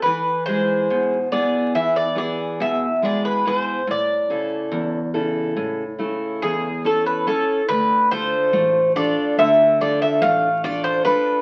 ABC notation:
X:1
M:9/8
L:1/16
Q:3/8=47
K:none
V:1 name="Bouzouki"
B2 c4 d2 e d d2 e2 d B c2 | d12 ^G2 A B A2 | B2 c4 d2 e2 d e f2 d c B2 |]
V:2 name="Steel-string acoustic guitar"
E,2 [^G,E^G]2 B,,2 [B,EG]2 E,2 [B,EG]2 B,,2 [G,EG]2 [B,,EG]2 | A,,2 [^C,EA]2 E,,2 [C,EA]2 A,,2 [C,A,E]2 E,,2 [^CEA]2 [CEA]2 | D,2 [DFA]2 A,2 [DFA]2 D,2 [DFA]2 A,2 [DFA]2 [DFA]2 |]
V:3 name="Upright bass" clef=bass
z16 z2 | z16 z2 | D,,4 A,,,4 D,,4 A,,,6 |]